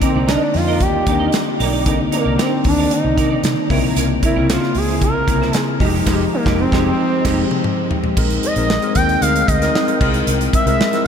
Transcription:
Already playing: D3 A#3 C4 D#4
0.01 C4 D#4 A#4 D5, kick, closed hi-hat
0.14 C2 A#3 C4 D4 D#4 A#4 D5
0.27 D4 D#4 A#4 D#5, snare, closed hi-hat
0.41 muted clean electric guitar stroke
0.54 F2 F4, muted clean electric guitar stroke, snare, open hi-hat
0.67 D#4 A#4 D#5
0.80 D#2 G4, muted clean electric guitar stroke, kick, closed hi-hat
0.93 muted clean electric guitar stroke
1.06 D#2 A#3 C4 D4 D#4 A#4 D5, kick, closed hi-hat
1.19 D#4 A#4 D#5
1.32 muted clean electric guitar stroke, snare, closed hi-hat
1.45 muted clean electric guitar stroke
1.59 B1 D#4 A#4 D5, open hi-hat
1.73 D#4 A#4 D5
1.85 C2 D3 A#3 C4 D#4 A#4 D5, kick, closed hi-hat
2.00 muted clean electric guitar stroke
2.11 A#3 C4 D4 D#4 A#4 D5, closed hi-hat
2.25 C2 D#4 A#4 D5
2.38 C4 D#4 A#4 D5, snare, closed hi-hat
2.51 muted clean electric guitar stroke
2.64 D2 D#3 A#3 C4 D4 D#4, muted clean electric guitar stroke, kick, open hi-hat
2.78 D#4 A#4 D5
2.91 D#4, muted clean electric guitar stroke, closed hi-hat
3.04 C2, muted clean electric guitar stroke
3.17 C3 D#4 A#4 D5, kick, closed hi-hat
3.30 D#4 A#4 D5
3.43 C3, muted clean electric guitar stroke, snare, closed hi-hat
3.57 muted clean electric guitar stroke
3.70 C2 C#3 A#3 C4 C#4 E4 A#4, kick, open hi-hat
3.83 B1 C#4 E4 A#4
3.96 C2 C#4 E4 A#4, closed hi-hat
4.10 muted clean electric guitar stroke
4.23 C#4 E4 A#4, kick, closed hi-hat
4.36 C2 C#3 A#3 C4 C#4 E4 A#4
4.49 C#4 E4 F4 C5, snare, closed hi-hat
4.63 muted clean electric guitar stroke, snare
4.75 C#2 G#4, muted clean electric guitar stroke, open hi-hat
4.88 C#4 E4 C5
5.02 C2 A#4, muted clean electric guitar stroke, kick, closed hi-hat
5.15 muted clean electric guitar stroke
5.27 C2 C#3 A#3 C4 C#4 E4 A#4, kick, closed hi-hat
5.41 C#4 E4 C5, snare
5.53 muted clean electric guitar stroke, snare, closed hi-hat
5.58 G#4
5.68 muted clean electric guitar stroke
5.79 F1 F3 G#3 D#4 F#4 G4, kick, open hi-hat
5.87 G4
5.93 G#3 D#4 G4
6.06 F1 F3 G#3 D#4 G4, kick, snare, crash
6.14 G4
6.34 A#3
6.45 F1 F3 G#3 D#4 G4, kick, snare
6.60 C4
6.72 F1 F3 G#3 D#4 G4, kick, snare
6.86 C4
7.24 F1 F3 G#3 D#4 G4, kick, snare, crash
7.51 mid tom
7.64 mid tom
7.91 floor tom
8.04 floor tom
8.17 A#1 G#3 C4 D#4 A#4, kick, crash
8.30 closed hi-hat
8.43 D#5, closed hi-hat
8.55 A#1 G#3 C4 D#4 A#4 D#5, closed hi-hat
8.70 snare
8.82 G#3 C4 D#4 A#4, closed hi-hat
8.95 D#2 G5, kick, closed hi-hat
9.09 closed hi-hat
9.21 D2 G#3 C4 D#4 A#4 F5, closed hi-hat
9.36 closed hi-hat
9.47 D2 D#5, kick, closed hi-hat
9.61 G#3 C4 D#4 A#4, snare, closed hi-hat
9.75 snare
9.87 G#3 C4 D#4 A#4, closed hi-hat
10.00 C2 G#3 C4 E4 A#4, kick, crash
10.14 closed hi-hat
10.27 C2, closed hi-hat
10.41 closed hi-hat
10.53 E5, kick, closed hi-hat
10.66 C2 G#3 C4 E4 A#4 E5, closed hi-hat
10.81 snare
10.93 G#3 C4 E4 A#4, snare, closed hi-hat

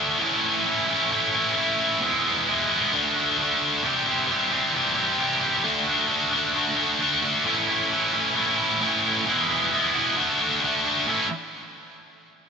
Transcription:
Already playing: D3 A3 D4 F#4
0.19 A2 E3 A3 C#4 E4
0.65 E3 A3 C#4 E4
0.88 A3 C#4 E4
1.10 A2 E3 A3 C#4 E4
1.33 A3 C#4 E4
1.55 E3 A3 C#4 E4
2.00 E2 B2 E3 G#3 B3 E4
2.47 E3 G#3 B3 E4
2.69 E3 G#3 B3 E4
2.92 D3 A3 D4 F#4
3.16 A3 D4 F#4
3.39 D3 A3 D4 F#4
3.83 C3 E3 G3 C4 G4
4.05 G3 C4 G4
4.28 E3 G3 C4 G4
4.51 C3 E3 G3 C4 G4
4.73 E3 G3 C4 G4
4.95 G3 C4 G4
5.18 C3 E3 G3 C4 G4
5.41 G3 C4 G4
5.64 D3 A3 D4 F#4
5.85 A3 D4 F#4
6.07 D3 A3 D4 F#4
6.31 D3 A3 D4 F#4
6.54 D3 A3 D4 F#4
6.76 A3 D4 F#4
6.99 D3 A3 D4 F#4
7.22 A3 D4 F#4
7.44 A2 E3 A3 C#4 E4
7.67 A3 C#4 E4
7.89 E3 A3 C#4
7.93 E4
8.12 A2 E3 A3 C#4 E4
8.34 E3 A3 C#4 E4
8.57 A3 C#4 E4
8.80 A2 E3 A3 C#4 E4
9.02 A3 C#4 E4
9.25 E2 B2 E3 G#3 B3 E4
9.48 E3 G#3 B3 E4
9.71 E3 G#3 B3 E4
9.94 E2 B2 E3 G#3 B3 E4
10.16 D3 A3 D4 F#4
10.38 A3 D4 F#4
10.61 D3 A3 D4 F#4
10.84 A3 D4 F#4
11.07 A2 E3 A3 C#4 E4

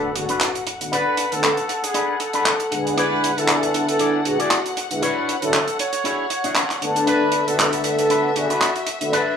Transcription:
Already playing: D4 A4 B4 F#5, impact
0.15 D4 F#4 A4 B4 G#5, closed hi-hat
0.29 D4 A4 B4, closed hi-hat
0.41 clap, closed hi-hat
0.55 closed hi-hat
0.66 muted clean electric guitar stroke, closed hi-hat
0.80 D4 A4 B4 F#5, closed hi-hat
0.91 D4 A4 B4, closed hi-hat
1.17 closed hi-hat
1.32 D4 A4 B4 F#5, closed hi-hat
1.43 clap, closed hi-hat
1.57 muted clean electric guitar stroke, closed hi-hat
1.68 muted clean electric guitar stroke, closed hi-hat
1.82 G#4, muted clean electric guitar stroke, closed hi-hat
1.94 D4 A4 B4, closed hi-hat
2.20 A4, closed hi-hat
2.33 D4 A4 B4, closed hi-hat
2.46 clap, closed hi-hat
2.60 closed hi-hat
2.71 D4 G#4 B4 G#5, muted clean electric guitar stroke, closed hi-hat
2.87 closed hi-hat
2.97 E4 G#4 B4 D5, closed hi-hat
3.24 closed hi-hat
3.36 D4 A4 B4 E5 G#5, closed hi-hat
3.48 clap, closed hi-hat
3.62 muted clean electric guitar stroke, closed hi-hat
3.74 muted clean electric guitar stroke, closed hi-hat
3.88 A4, muted clean electric guitar stroke, closed hi-hat
3.99 E4 G#4 D5, closed hi-hat
4.25 D4 F#4 G#4 B4 F#5, closed hi-hat
4.39 E4 G#4 D5, closed hi-hat
4.51 clap, closed hi-hat
4.66 closed hi-hat
4.77 muted clean electric guitar stroke, closed hi-hat
4.91 D4 G#4 B4 E5, closed hi-hat
5.02 D4 E4 F#4 B4 C#5, closed hi-hat
5.29 closed hi-hat
5.42 D4 F#4 A4 C#5 E5, closed hi-hat
5.53 clap, closed hi-hat
5.67 muted clean electric guitar stroke, closed hi-hat
5.79 C#5, muted clean electric guitar stroke, closed hi-hat
5.92 muted clean electric guitar stroke, closed hi-hat
6.04 D4 E4 F#4 G#4, closed hi-hat
6.30 closed hi-hat
6.44 D4 E4 F#4 C#5, closed hi-hat
6.55 clap, closed hi-hat
6.70 clap, closed hi-hat
6.81 D4 A4 B4 A5, muted clean electric guitar stroke, closed hi-hat
6.96 closed hi-hat
7.07 D4 A4 B4 E5, closed hi-hat
7.32 closed hi-hat
7.46 D4 A4 B4 F#5, closed hi-hat
7.59 clap, closed hi-hat
7.73 muted clean electric guitar stroke, closed hi-hat
7.84 muted clean electric guitar stroke, closed hi-hat
7.98 A4, muted clean electric guitar stroke, closed hi-hat
8.10 D4 A4 B4, closed hi-hat
8.35 D4 F#4 A4 B4 G#5, closed hi-hat
8.49 D4 A4 B4, closed hi-hat
8.61 clap, closed hi-hat
8.76 closed hi-hat
8.87 muted clean electric guitar stroke, closed hi-hat
9.01 D4 A4 B4 F#5, closed hi-hat
9.12 D4 A4 B4, closed hi-hat

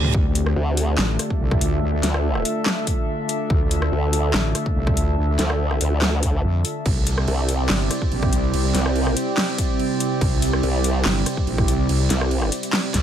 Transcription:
Already playing: D2 C3 A3 C4 E4 G4 D5, reverse cymbal
0.04 mid tom
0.14 D2 D3 D4 F4, kick
0.35 closed hi-hat
0.46 A4, cross-stick
0.56 D2
0.77 closed hi-hat
0.88 E5
0.98 A1, snare, clap
1.19 cross-stick, closed hi-hat
1.30 kick
1.40 C2
1.51 kick, cross-stick
1.61 D2, closed hi-hat
1.82 D2
2.03 D2, snare, closed hi-hat
2.14 cross-stick
2.35 cross-stick
2.45 closed hi-hat
2.66 snare, clap
2.87 kick, closed hi-hat
3.29 closed hi-hat
3.50 D2, kick
3.71 closed hi-hat
3.82 cross-stick
3.92 D2
4.13 closed hi-hat
4.34 A1, snare, clap
4.55 cross-stick, closed hi-hat
4.66 kick
4.76 C2
4.87 kick, cross-stick
4.97 D2, closed hi-hat
5.18 D2
5.39 D2, snare, closed hi-hat
5.50 cross-stick
5.71 cross-stick
5.81 D2, closed hi-hat
6.02 snare, clap
6.23 kick, closed hi-hat
6.44 F2
6.65 closed hi-hat
6.86 C2 C3 G3 C4 E4, kick, crash
6.97 G4 D5
7.07 closed hi-hat
7.18 cross-stick
7.28 C2, crash
7.49 closed hi-hat
7.70 G1, snare, clap, crash
7.91 cross-stick, closed hi-hat
8.02 kick
8.12 A#1, crash
8.23 kick, cross-stick
8.33 C2, closed hi-hat
8.53 C2, crash
8.74 C2, snare, closed hi-hat
8.86 cross-stick
8.96 crash
9.07 cross-stick
9.17 closed hi-hat
9.38 snare, clap, crash
9.58 kick, closed hi-hat
9.79 crash
10.00 closed hi-hat
10.21 C2, kick, crash
10.42 closed hi-hat
10.53 cross-stick
10.63 C2, crash
10.84 closed hi-hat
11.05 G1, snare, clap, crash
11.26 cross-stick, closed hi-hat
11.37 kick
11.47 A#1, crash
11.58 kick, cross-stick
11.68 C2, closed hi-hat
11.89 C2, crash
12.10 C2, snare, closed hi-hat
12.21 cross-stick
12.31 crash
12.42 cross-stick
12.52 closed hi-hat
12.63 closed hi-hat
12.73 snare, clap, crash
12.94 C2, kick, snare, closed hi-hat

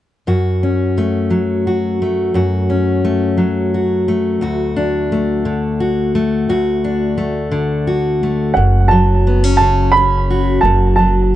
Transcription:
0.27 F#2 F#4
0.63 C#4
0.98 A3
1.30 F#3
1.67 F#4
2.02 A3
2.34 F#2 F#4
2.70 C#4
3.05 A3
3.37 F#3
3.74 F#4
4.08 A3
4.41 D2 F#4
4.76 D4
5.12 A3
5.45 D3
5.80 F#4
6.15 A3
6.49 D2 F#4
6.84 D4
7.18 A3
7.51 D3
7.87 F#4
8.23 A3
8.54 F#1 F#2 F#5
8.88 F#3 A5
9.27 B3
9.44 C#4
9.57 C#3 A5
9.92 B5
9.97 C#4
10.30 F#4
10.61 F#1 F#2 A5
10.96 F#3 A5

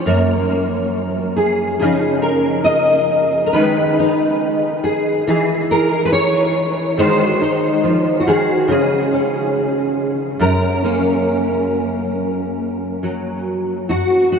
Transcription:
0.06 F#2 A#3 A#4
0.50 A#3
1.36 G#4
1.80 C#3 F3 D#4 G#4
2.22 A#4
2.64 D#5
3.46 A#4
3.53 D#3 G#3 D#4 B4
3.99 D#4
4.84 G#4
5.27 E3 G#4
5.71 A#4
6.05 B4
6.12 C#5
6.98 D#3 G#3 D#4 F#4 C5
7.42 D#4
7.84 F3
8.20 F#4
8.27 D#3 G#4
8.68 C#3 G#4
9.13 C#4
10.39 F#2 A#4
10.84 A#3 C#4
13.03 F#3
13.89 F#2 F#4
14.32 F#4

